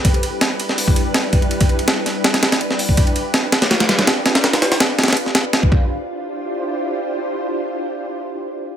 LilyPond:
<<
  \new Staff \with { instrumentName = "String machine" } { \time 4/4 \key d \dorian \tempo 4 = 164 << { <d' g' b'>1~ | <d' g' b'>1~ | <d' g' b'>1~ | <d' g' b'>2.~ <d' g' b'>8 <d' e' f' g' c''>8~ |
<d' e' f' g' c''>1~ | <d' e' f' g' c''>1 | } \\ { <g e'>1~ | <g e'>1 | <f' g'>1~ | <f' g'>2.~ <f' g'>8 r8 |
r1 | r1 | } >> }
  \new DrumStaff \with { instrumentName = "Drums" } \drummode { \time 4/4 <bd cymr>16 cymr16 cymr8 <cymr sn>8 cymr16 sn16 hho16 bd16 cymr8 <cymr sn>8 <bd cymr>16 cymr16 | cymr16 <bd cymr>16 cymr16 cymr16 <cymr sn>8 <cymr sn>8 <cymr sn>16 <cymr sn>16 <cymr sn>16 <cymr sn>16 cymr16 sn16 hho16 bd16 | <bd cymr>16 cymr16 cymr8 <cymr sn>8 <cymr sn>16 <cymr sn>16 <cymr sn>16 <cymr sn>16 <cymr sn>16 <cymr sn>16 <cymr sn>8 <cymr sn>16 <cymr sn>16 | <cymr sn>16 <cymr sn>16 <cymr sn>16 <cymr sn>16 <cymr sn>8 <cymr sn>32 <cymr sn>32 <cymr sn>32 <cymr sn>32 cymr16 sn16 <cymr sn>8 <cymr sn>16 bd16 bd8 |
r4 r4 r4 r4 | r4 r4 r4 r4 | }
>>